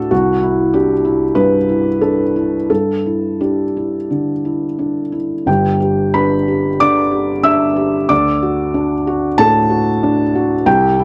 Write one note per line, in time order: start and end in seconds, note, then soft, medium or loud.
0.00 0.13 A2 medium
0.00 0.14 D4 medium
0.00 0.11 F#4 medium
0.00 0.11 A4 medium
0.11 1.33 C2 medium
0.11 0.74 F#4 medium
0.43 0.92 E4 medium
0.74 1.24 D4 soft
0.74 1.36 G4 medium
1.05 1.55 E4 medium
1.35 1.87 G2 medium
1.35 2.01 B4 medium
1.69 2.21 E4 soft
2.01 2.56 D4 soft
2.01 2.68 A4 medium
2.36 2.70 E4 soft
2.70 4.07 G2 soft
2.70 3.40 A4 medium
3.06 3.62 E4 soft
3.41 3.96 D4 soft
3.41 5.14 G4 soft
3.77 4.31 E4 soft
4.11 4.65 D3 soft
4.45 5.00 E4 soft
4.79 5.34 D4 soft
5.12 5.47 E4 soft
5.46 6.75 G1 medium
5.46 6.76 G2 soft
5.46 5.79 G4 medium
5.46 6.14 G5 medium
5.80 6.34 G4 medium
6.14 6.67 D4 soft
6.14 6.77 B4 medium
6.14 6.80 B5 medium
6.48 7.00 G4 soft
6.80 7.32 D3 medium
6.80 7.41 D5 medium
6.80 7.45 D6 medium
7.11 7.64 G4 soft
7.43 7.96 D4 soft
7.43 8.06 E5 medium
7.43 8.09 E6 medium
7.76 8.09 G4 medium
8.09 9.34 D2 medium
8.09 9.34 D5 medium
8.09 9.38 D6 medium
8.43 8.94 F#4 medium
8.74 9.26 D4 medium
9.07 9.58 F#4 medium
9.38 9.90 A2 medium
9.38 10.63 A4 medium
9.38 10.66 A5 loud
9.70 10.22 F#4 medium
10.03 10.54 D4 medium
10.35 10.67 F#4 medium
10.66 11.04 C2 medium
10.66 11.04 G4 medium
10.66 11.04 G5 medium
10.99 11.04 E4 medium